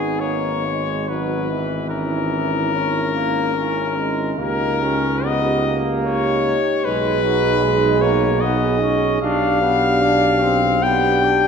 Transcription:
Already playing: G#1 B3 D#4 G#4
0.20 A#3 C#5
0.65 G#3
1.08 F#3 B3 D#4 B4
1.51 E3
1.90 C#4 E4 A#4
2.74 C#4
3.14 A#3
3.55 C#4 E4
3.97 G#3
4.38 C#2 A#3 D#4 G4 A#4
4.81 C#4
5.25 B3 D#4 G4 D#5
5.67 A#3
6.06 D#4 G4 C#5
6.85 B1 G#3 D#4 G#4 B4
7.25 F#3
7.63 G#3
8.02 A#3 C#5
8.41 B3 D#4 G#4 D#5
8.81 C#4
9.22 B1 D4 G4 F5
9.62 B3
10.02 D4
10.42 C4
10.81 B3 D4 G4 G5
11.23 D4

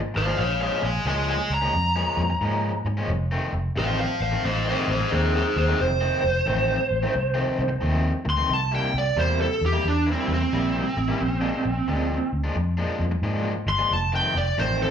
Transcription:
0.14 G#1 C5 F5, muted overdriven electric guitar stroke
0.27 A#2 F3 G#3 D4
0.39 A#1 C#5 F5
0.61 A#2 F3 G#3 C#4 C#5 F5
0.82 A#1 D#5 G#5, muted overdriven electric guitar stroke
1.05 C#2 A#2 F3 G#3 C#4 D#5 G#5
1.30 D#5 G#5
1.50 C#2
1.54 A#5
1.62 A#2 F3 G#3 C#4
1.74 F2, muted overdriven electric guitar stroke
1.96 A#2 F3 G#3 C#4
2.17 F2
2.30 muted overdriven electric guitar stroke
2.41 G#2 A#2 F3 G#3 C#4
2.85 G#2, muted overdriven electric guitar stroke
2.97 A#2 F3 G#3 C#4
3.08 F1
3.31 F2 D#3 A3 C4
3.52 F1, muted overdriven electric guitar stroke
3.76 A1 F2 D#3 A3 C4 C5 F5
4.00 C5 F5
4.20 A1 C5 F5
4.32 F2 D#3 A3 C4
4.44 A1 C5 D#5, muted overdriven electric guitar stroke
4.65 F2 D#3 A3 C4 C5
4.70 D#5
4.88 A1 C5 D#5
5.00 muted overdriven electric guitar stroke
5.12 D#2 F2 D#3 A3 C4 G#4 C5
5.36 G#4 C5
5.56 D#2 G#4 C5, muted overdriven electric guitar stroke
5.68 F2 D#3 A3 C4
5.81 F1 C5
6.01 F2 D#3 A3 C4
6.23 F1, muted overdriven electric guitar stroke
6.46 A1 F2 D#3 A3 C4
6.91 A1
7.03 F2 D#3 A3 C4
7.14 C2, muted overdriven electric guitar stroke
7.34 F2 D#3 A3 C4
7.59 C2
7.68 muted overdriven electric guitar stroke
7.81 D#2 F2 D#3 A3 C4
8.25 D2, muted overdriven electric guitar stroke
8.30 C6
8.37 F2 D#3 A3 C4
8.49 C2
8.54 A5
8.72 C3 G3 A#3 E4 G5
8.94 C2, muted overdriven electric guitar stroke
8.98 D5
9.16 E2 C3 G3 A#3 E4 C5
9.41 A4
9.61 E2
9.66 G4
9.73 C3 G3 A#3 E4
9.84 E2 D4, muted overdriven electric guitar stroke
10.07 C3 G3 A#3 E4
10.12 C4
10.28 E2
10.33 C4
10.41 muted overdriven electric guitar stroke
10.53 A#1 C3 G3 A#3 E4
10.97 A1, muted overdriven electric guitar stroke
11.08 C3 G3 A#3 E4
11.21 A#1
11.41 A#2 F3 G#3 D4
11.64 A#1, muted overdriven electric guitar stroke
11.88 D2 A#2 F3 G#3 D4
12.33 D2
12.44 A#2 F3 G#3 D4
12.56 F2, muted overdriven electric guitar stroke
12.77 A#2 F3 G#3 D4
12.99 F2
13.12 muted overdriven electric guitar stroke
13.22 G#2 A#2 F3 G#3 D4
13.66 G1 C6, muted overdriven electric guitar stroke
13.79 A#2 F3 G#3 D4
13.91 F1 A5
14.12 F2 D#3 A3 C4 G5
14.35 F1 D5, muted overdriven electric guitar stroke
14.58 A1 F2 D#3 A3 C4 C5
14.83 A4

